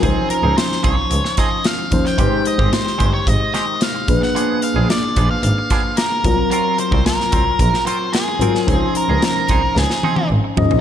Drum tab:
HH |x-x-x-x-x-x-x-x-|x-x-x-x-x-x-x-x-|x-x-x-x-x-x-x-x-|x-x-x-x-x-x-x-x-|
SD |----oo---oo-o--o|----oo----o-o--o|----o-----o-o---|----oo---o--o--o|
T1 |----------------|----------------|----------------|----------------|
FT |----------------|----------------|----------------|----------------|
BD |o-----o---o---o-|o--o--o-o-----o-|------o---o---o-|---o--o-o-------|

HH |x-x-x-x---------|
SD |----o---oo------|
T1 |----------oo----|
FT |--------------oo|
BD |o-----o---------|